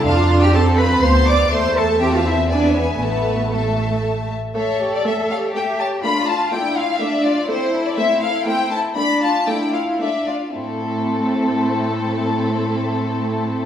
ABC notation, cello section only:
X:1
M:3/4
L:1/16
Q:1/4=120
K:Am
V:1 name="Cello section"
F3 G A2 B2 c2 d2 | c2 A2 G F E2 D2 B,2 | B,4 A,4 z4 | A8 G4 |
F4 E4 D4 | E12 | D4 E4 D2 z2 | A,,12- |
A,,12 |]